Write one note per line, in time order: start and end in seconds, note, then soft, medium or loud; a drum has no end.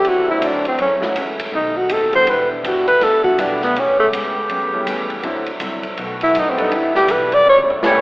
0.00 0.77 D3 medium
0.00 1.51 F#3 medium
0.00 0.78 C4 medium
0.00 0.77 E4 medium
0.00 0.10 G4 loud
0.04 0.40 E2 medium
0.04 0.29 D3 soft
0.04 0.30 F#3 medium
0.04 0.30 C4 medium
0.04 0.30 E4 medium
0.04 kick soft
0.04 ride medium
0.09 0.30 F#4 loud
0.27 0.76 F#3 medium
0.27 0.75 A3 medium
0.27 0.76 C4 medium
0.27 0.76 D4 medium
0.27 0.76 E4 medium
0.27 0.47 E4 medium
0.41 0.78 D2 loud
0.41 0.66 D3 medium
0.41 0.66 F#3 medium
0.41 0.67 C4 medium
0.41 0.67 E4 medium
0.41 kick soft
0.41 hi-hat pedal medium
0.41 ride medium
0.45 0.67 D4 medium
0.65 0.79 C4 medium
0.65 ride medium
0.78 1.00 F#2 medium
0.78 1.03 F#2 medium
0.78 1.52 C#3 medium
0.78 1.04 E3 medium
0.78 2.25 A3 medium
0.78 1.04 A3 medium
0.78 1.05 C#4 medium
0.78 0.95 C#4 medium
0.78 1.52 E4 medium
0.78 kick soft
0.78 ride medium
1.01 1.14 F#3 medium
1.01 1.14 A3 medium
1.01 1.14 C#4 medium
1.01 1.14 E4 medium
1.01 1.14 F#4 medium
1.01 muted upright bass stroke soft
1.01 snare medium
1.15 1.51 C#2 medium
1.15 1.41 F#2 medium
1.15 1.41 E3 medium
1.15 1.41 A3 medium
1.15 1.42 C#4 medium
1.15 kick soft
1.15 hi-hat pedal medium
1.15 ride medium
1.40 ride medium
1.51 1.88 B1 medium
1.51 1.77 B2 soft
1.51 2.26 C3 medium
1.51 1.77 D#3 soft
1.51 1.77 A3 soft
1.51 5.19 B3 medium
1.51 1.78 C4 medium
1.51 2.26 D#4 medium
1.51 1.78 D#4 medium
1.51 kick soft
1.77 1.94 F#4 loud
1.89 2.25 A1 medium
1.89 2.14 B2 medium
1.89 2.14 D#3 medium
1.89 2.14 A3 medium
1.89 2.15 C4 medium
1.89 kick soft
1.89 hi-hat pedal medium
1.89 ride medium
1.93 2.15 A4 medium
2.12 2.25 G3 medium
2.12 2.25 B3 medium
2.12 2.25 D4 medium
2.12 2.25 E4 medium
2.12 2.26 F#4 medium
2.12 2.32 C5 loud
2.12 ride medium
2.27 2.63 E1 medium
2.27 3.74 D3 medium
2.27 2.51 E3 medium
2.27 3.74 G3 medium
2.27 2.52 B3 soft
2.27 2.52 D4 medium
2.27 3.74 E4 medium
2.27 2.53 G4 medium
2.27 2.51 B4 loud
2.27 kick soft
2.27 ride medium
2.52 2.68 D4 medium
2.64 3.00 G1 medium
2.64 2.88 E3 medium
2.64 2.89 B3 medium
2.64 2.89 D4 medium
2.64 2.87 F#4 medium
2.64 2.89 G4 medium
2.64 kick soft
2.64 hi-hat pedal medium
2.64 ride medium
2.88 3.05 B4 loud
2.88 ride soft
3.01 3.37 D2 medium
3.01 3.25 E3 soft
3.01 3.26 B3 medium
3.01 3.26 D4 soft
3.01 3.26 G4 soft
3.01 3.23 A4 loud
3.01 kick soft
3.01 snare soft
3.01 ride medium
3.24 3.72 G3 medium
3.24 3.72 B3 medium
3.24 3.72 D4 medium
3.24 3.72 E4 medium
3.24 3.42 F#4 loud
3.24 3.72 F#4 medium
3.24 kick medium
3.38 3.74 B1 loud
3.38 3.63 E3 medium
3.38 3.63 B3 medium
3.38 3.63 D4 medium
3.38 3.63 G4 medium
3.38 kick soft
3.38 hi-hat pedal medium
3.38 ride medium
3.62 3.81 B3 loud
3.62 snare soft
3.74 3.89 A1 loud
3.74 3.99 A2 medium
3.74 5.21 C#3 medium
3.74 4.00 G3 medium
3.74 5.22 A3 medium
3.74 4.00 B3 medium
3.74 4.01 C#4 medium
3.74 5.21 G4 medium
3.74 kick soft
3.74 ride medium
3.79 3.99 C#4 loud
3.89 4.00 G1 medium
4.00 4.12 E1 medium
4.00 4.08 A3 loud
4.12 4.48 C#2 loud
4.12 4.37 A2 medium
4.12 4.37 G3 medium
4.12 4.37 B3 medium
4.12 4.38 C#4 medium
4.12 kick soft
4.12 hi-hat pedal medium
4.12 ride medium
4.49 4.85 F#2 loud
4.49 4.74 A2 medium
4.49 4.74 G3 medium
4.49 4.75 B3 medium
4.49 4.75 C#4 medium
4.49 kick soft
4.49 ride medium
4.73 5.21 G3 medium
4.73 5.21 A3 medium
4.73 5.21 B3 medium
4.73 5.21 C#4 medium
4.73 5.21 E4 medium
4.87 5.22 E2 loud
4.87 5.11 A2 medium
4.87 5.11 G3 medium
4.87 5.12 B3 medium
4.87 5.12 C#4 medium
4.87 kick soft
4.87 hi-hat pedal medium
4.87 ride medium
5.10 ride soft
5.23 5.59 D2 medium
5.23 5.97 D3 medium
5.23 5.48 D3 medium
5.23 5.97 F#3 medium
5.23 5.44 F#3 medium
5.23 5.48 F#3 medium
5.23 5.45 A3 medium
5.23 5.96 C4 medium
5.23 5.45 C4 medium
5.23 5.49 C4 medium
5.23 5.45 D4 medium
5.23 5.97 E4 medium
5.23 5.45 E4 medium
5.23 5.49 E4 medium
5.23 kick soft
5.23 ride medium
5.46 ride medium
5.60 5.96 C2 loud
5.60 5.85 D3 medium
5.60 5.85 F#3 medium
5.60 5.86 C4 medium
5.60 5.86 E4 medium
5.60 kick soft
5.60 hi-hat pedal medium
5.60 ride medium
5.83 ride medium
5.97 6.33 B1 loud
5.97 6.22 B2 soft
5.97 6.71 D#3 medium
5.97 6.22 F#3 medium
5.97 6.23 A3 medium
5.97 6.71 A3 medium
5.97 7.44 B3 medium
5.97 6.23 D#4 medium
5.97 6.71 F#4 medium
5.97 kick soft
5.97 ride medium
6.21 6.40 E4 loud
6.21 ride medium
6.33 6.70 F#2 loud
6.33 6.58 B2 medium
6.33 6.59 F#3 medium
6.33 6.59 A3 medium
6.33 6.59 D#4 medium
6.33 kick soft
6.33 hi-hat pedal medium
6.33 ride medium
6.39 6.52 D#4 loud
6.50 6.64 C4 medium
6.57 6.70 G3 medium
6.57 6.69 B3 medium
6.57 6.70 D4 medium
6.57 6.70 E4 medium
6.57 6.70 A4 medium
6.57 ride medium
6.62 6.77 D#4 medium
6.70 7.07 E2 medium
6.70 7.45 D3 medium
6.70 6.95 E3 medium
6.70 8.01 G3 medium
6.70 6.96 B3 medium
6.70 6.96 D4 medium
6.70 8.01 E4 medium
6.70 6.97 G4 medium
6.70 kick soft
6.70 ride medium
6.76 6.95 E4 medium
6.95 7.13 G4 loud
6.95 snare medium
7.07 7.44 B1 loud
7.07 7.32 E3 medium
7.07 7.33 B3 medium
7.07 7.33 D4 medium
7.07 7.33 G4 medium
7.07 kick soft
7.07 hi-hat pedal medium
7.07 ride medium
7.12 7.36 B4 loud
7.32 7.47 D5 loud
7.32 ride medium
7.45 7.67 A1 medium
7.45 7.70 A2 soft
7.45 8.01 C#3 medium
7.45 7.71 G3 soft
7.45 8.01 A3 medium
7.45 7.71 C#4 medium
7.45 7.71 E4 medium
7.49 7.62 C#5 loud
7.57 high tom medium
7.68 muted upright bass stroke soft
7.68 floor tom medium
7.82 8.01 C#2 loud
7.82 8.01 A2 medium
7.82 8.01 E3 medium
7.82 8.01 G3 medium
7.82 8.01 A3 medium
7.82 8.01 B3 medium
7.82 8.01 C#4 medium
7.82 8.01 E4 medium
7.82 8.01 G4 medium
7.82 8.01 C#5 medium
7.82 snare medium
7.82 hi-hat pedal medium
7.95 floor tom medium